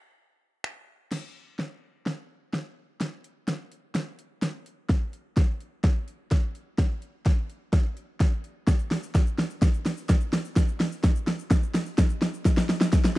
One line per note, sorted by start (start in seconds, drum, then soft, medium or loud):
0.64 finger snap loud
1.12 snare soft
1.12 crash medium
1.59 snare medium
2.06 snare medium
2.53 snare medium
3.01 snare medium
3.01 closed hi-hat medium
3.24 closed hi-hat medium
3.48 snare medium
3.48 closed hi-hat medium
3.72 closed hi-hat soft
3.95 snare medium
3.95 closed hi-hat medium
4.19 closed hi-hat medium
4.42 snare medium
4.42 closed hi-hat medium
4.66 closed hi-hat soft
4.89 kick loud
4.89 snare medium
4.89 closed hi-hat medium
5.13 closed hi-hat medium
5.37 kick loud
5.37 snare medium
5.37 closed hi-hat medium
5.60 closed hi-hat soft
5.84 kick loud
5.84 snare medium
5.84 closed hi-hat medium
6.08 closed hi-hat medium
6.31 kick loud
6.31 snare medium
6.31 closed hi-hat medium
6.55 closed hi-hat soft
6.78 kick loud
6.78 snare medium
6.78 closed hi-hat medium
7.02 closed hi-hat medium
7.25 kick loud
7.25 snare medium
7.25 closed hi-hat medium
7.50 closed hi-hat soft
7.73 kick loud
7.73 snare medium
7.73 closed hi-hat medium
7.97 closed hi-hat medium
8.20 kick loud
8.20 snare medium
8.20 closed hi-hat medium
8.44 closed hi-hat soft
8.67 kick loud
8.67 snare medium
8.67 closed hi-hat medium
8.67 shaker medium
8.79 shaker soft
8.91 snare medium
8.91 open hi-hat medium
9.03 shaker soft
9.15 kick loud
9.15 snare medium
9.15 closed hi-hat medium
9.15 shaker medium
9.27 shaker soft
9.38 snare medium
9.38 open hi-hat medium
9.50 shaker soft
9.62 kick loud
9.62 snare medium
9.62 closed hi-hat medium
9.62 shaker medium
9.74 shaker soft
9.85 snare medium
9.85 open hi-hat medium
9.85 shaker medium
9.97 shaker medium
10.09 kick loud
10.09 snare medium
10.09 closed hi-hat medium
10.09 shaker medium
10.21 shaker soft
10.33 snare medium
10.33 open hi-hat medium
10.33 shaker soft
10.45 shaker soft
10.56 kick loud
10.56 snare medium
10.56 closed hi-hat medium
10.56 shaker medium
10.68 shaker soft
10.80 snare medium
10.80 open hi-hat medium
10.92 shaker soft
11.03 kick loud
11.03 snare medium
11.03 closed hi-hat medium
11.03 shaker medium
11.16 shaker medium
11.27 snare medium
11.27 open hi-hat medium
11.39 shaker medium
11.51 kick loud
11.51 snare loud
11.51 closed hi-hat medium
11.51 shaker medium
11.63 shaker soft
11.74 snare loud
11.74 open hi-hat medium
11.74 shaker medium
11.86 shaker medium
11.98 kick loud
11.98 snare loud
11.98 closed hi-hat medium
11.98 shaker medium
12.09 shaker medium
12.22 snare loud
12.22 open hi-hat medium
12.22 shaker soft
12.34 shaker medium
12.45 kick loud
12.45 snare loud
12.45 closed hi-hat medium
12.45 shaker medium
12.57 snare loud
12.57 shaker soft
12.57 shaker medium
12.69 snare loud
12.69 open hi-hat medium
12.69 shaker medium
12.81 snare loud
12.81 shaker medium
12.92 kick loud
12.92 snare loud
12.92 closed hi-hat medium
12.92 shaker medium
13.04 snare loud
13.04 shaker soft
13.04 shaker medium